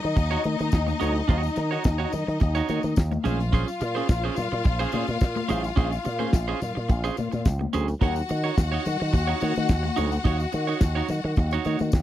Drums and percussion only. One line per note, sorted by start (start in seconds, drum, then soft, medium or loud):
0.04 closed hi-hat medium
0.16 kick loud
0.16 closed hi-hat medium
0.16 tambourine medium
0.31 closed hi-hat soft
0.44 closed hi-hat medium
0.44 tambourine soft
0.44 muted conga soft
0.44 high conga medium
0.59 closed hi-hat soft
0.59 tambourine soft
0.59 high conga medium
0.72 kick loud
0.72 snare loud
0.72 tambourine medium
0.87 tambourine soft
0.87 high conga medium
1.00 closed hi-hat medium
1.00 tambourine medium
1.00 muted conga soft
1.00 low conga medium
1.16 closed hi-hat medium
1.28 kick loud
1.28 closed hi-hat medium
1.28 muted conga soft
1.28 low conga medium
1.44 snare soft
1.44 tambourine medium
1.56 closed hi-hat medium
1.56 tambourine medium
1.56 muted conga soft
1.72 closed hi-hat soft
1.84 kick loud
1.84 snare loud
1.84 tambourine loud
2.00 closed hi-hat soft
2.13 open hi-hat medium
2.13 tambourine medium
2.13 muted conga soft
2.13 low conga medium
2.29 closed hi-hat medium
2.40 kick loud
2.40 closed hi-hat medium
2.40 tambourine soft
2.56 tambourine soft
2.69 closed hi-hat medium
2.69 tambourine medium
2.69 muted conga soft
2.69 high conga medium
2.83 closed hi-hat soft
2.83 tambourine soft
2.83 high conga medium
2.96 kick loud
2.96 snare loud
2.96 tambourine medium
3.11 closed hi-hat soft
3.11 tambourine soft
3.11 high conga loud
3.24 closed hi-hat medium
3.24 tambourine medium
3.24 low conga medium
3.40 closed hi-hat medium
3.51 kick loud
3.51 closed hi-hat medium
3.51 muted conga soft
3.51 low conga medium
3.68 tambourine medium
3.81 closed hi-hat medium
3.81 tambourine medium
3.96 closed hi-hat soft
4.09 kick loud
4.09 snare loud
4.09 tambourine loud
4.23 closed hi-hat soft
4.36 open hi-hat medium
4.36 tambourine medium
4.36 muted conga soft
4.36 low conga medium
4.53 closed hi-hat soft
4.64 kick loud
4.64 closed hi-hat medium
4.64 tambourine medium
4.64 muted conga soft
4.80 closed hi-hat soft
4.80 tambourine soft
4.92 closed hi-hat medium
4.92 tambourine medium
4.92 muted conga soft
4.92 high conga medium
5.08 closed hi-hat soft
5.08 tambourine soft
5.08 high conga medium
5.21 kick loud
5.21 snare loud
5.21 tambourine medium
5.21 muted conga soft
5.36 tambourine soft
5.36 high conga loud
5.49 closed hi-hat medium
5.49 tambourine medium
5.49 muted conga soft
5.49 low conga medium
5.64 closed hi-hat medium
5.64 tambourine soft
5.76 kick loud
5.76 closed hi-hat medium
5.76 muted conga soft
5.76 low conga medium
5.93 snare soft
5.93 closed hi-hat soft
5.93 tambourine soft
6.05 closed hi-hat medium
6.05 tambourine medium
6.05 muted conga soft
6.20 closed hi-hat soft
6.20 high conga medium
6.33 kick loud
6.33 snare loud
6.33 tambourine loud
6.61 closed hi-hat medium
6.61 tambourine medium
6.61 low conga medium
6.77 closed hi-hat soft
6.89 kick loud
6.89 closed hi-hat medium
6.89 tambourine medium
6.89 muted conga soft
7.05 tambourine soft
7.17 closed hi-hat medium
7.17 tambourine medium
7.17 muted conga soft
7.17 high conga medium
7.32 closed hi-hat soft
7.32 tambourine soft
7.32 high conga medium
7.45 kick loud
7.45 snare loud
7.45 tambourine medium
7.45 muted conga soft
7.61 high conga medium
7.73 closed hi-hat medium
7.73 tambourine medium
7.73 muted conga soft
7.73 low conga medium
7.88 closed hi-hat medium
7.88 tambourine soft
8.01 kick loud
8.01 closed hi-hat medium
8.01 low conga medium
8.16 closed hi-hat soft
8.16 tambourine medium
8.29 closed hi-hat medium
8.29 tambourine medium
8.29 muted conga soft
8.45 closed hi-hat soft
8.58 kick loud
8.58 snare loud
8.58 tambourine loud
8.86 open hi-hat medium
8.86 tambourine medium
8.86 muted conga soft
8.86 low conga medium
9.01 closed hi-hat medium
9.13 kick loud
9.13 closed hi-hat medium
9.13 tambourine medium
9.13 muted conga soft
9.41 closed hi-hat medium
9.41 tambourine soft
9.41 muted conga soft
9.41 high conga medium
9.55 closed hi-hat soft
9.55 tambourine soft
9.55 high conga medium
9.69 kick loud
9.69 snare loud
9.69 tambourine medium
9.84 tambourine soft
9.84 high conga medium
9.97 closed hi-hat medium
9.97 tambourine medium
9.97 low conga medium
10.12 closed hi-hat medium
10.12 tambourine soft
10.24 kick loud
10.24 closed hi-hat medium
10.24 muted conga soft
10.24 low conga medium
10.40 tambourine medium
10.52 closed hi-hat medium
10.52 tambourine medium
10.52 muted conga soft
10.68 closed hi-hat soft
10.81 kick loud
10.81 snare loud
10.81 tambourine loud
11.09 open hi-hat medium
11.09 tambourine medium
11.09 muted conga soft
11.09 low conga medium
11.25 closed hi-hat medium
11.36 kick loud
11.36 closed hi-hat medium
11.36 tambourine soft
11.36 muted conga soft
11.51 closed hi-hat soft
11.51 tambourine soft
11.64 closed hi-hat medium
11.64 tambourine soft
11.64 muted conga soft
11.64 high conga medium
11.79 closed hi-hat soft
11.79 tambourine soft
11.79 high conga medium
11.92 kick loud
11.92 snare loud
11.92 tambourine medium